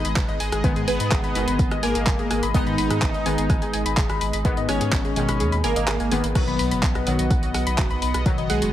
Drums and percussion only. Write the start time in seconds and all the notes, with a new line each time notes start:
0.05 closed hi-hat
0.16 kick, clap, closed hi-hat
0.29 closed hi-hat
0.40 open hi-hat
0.52 cross-stick, closed hi-hat
0.64 kick, closed hi-hat
0.76 closed hi-hat
0.88 open hi-hat
1.00 closed hi-hat
1.12 kick, cross-stick, clap, closed hi-hat
1.24 closed hi-hat
1.35 open hi-hat
1.48 closed hi-hat
1.59 kick, closed hi-hat
1.71 cross-stick, closed hi-hat
1.83 open hi-hat
1.95 closed hi-hat
2.07 kick, clap, closed hi-hat
2.19 closed hi-hat
2.31 cross-stick, open hi-hat
2.43 closed hi-hat
2.54 kick, closed hi-hat
2.67 closed hi-hat
2.78 open hi-hat
2.90 cross-stick, closed hi-hat
3.02 kick, clap, closed hi-hat
3.14 closed hi-hat
3.26 open hi-hat
3.38 closed hi-hat
3.50 kick, cross-stick, closed hi-hat
3.62 closed hi-hat
3.74 open hi-hat
3.86 closed hi-hat
3.97 kick, clap, closed hi-hat
4.10 cross-stick, closed hi-hat
4.21 open hi-hat
4.33 closed hi-hat
4.45 kick, closed hi-hat
4.57 closed hi-hat
4.69 cross-stick, open hi-hat
4.81 closed hi-hat
4.92 kick, clap, closed hi-hat
5.05 closed hi-hat
5.16 open hi-hat
5.29 cross-stick, closed hi-hat
5.40 closed hi-hat
5.52 closed hi-hat
5.64 open hi-hat
5.76 closed hi-hat
5.88 cross-stick, clap, closed hi-hat
6.00 closed hi-hat
6.12 open hi-hat
6.24 closed hi-hat
6.35 kick, cross-stick, closed hi-hat, crash
6.48 closed hi-hat
6.59 open hi-hat
6.71 closed hi-hat
6.83 kick, clap, closed hi-hat
6.95 cross-stick, closed hi-hat
7.07 open hi-hat
7.19 closed hi-hat
7.31 kick, closed hi-hat
7.43 closed hi-hat
7.54 cross-stick, open hi-hat
7.67 closed hi-hat
7.78 kick, clap, closed hi-hat
7.91 closed hi-hat
8.02 open hi-hat
8.14 cross-stick, closed hi-hat
8.26 kick, closed hi-hat
8.38 closed hi-hat
8.50 open hi-hat
8.62 closed hi-hat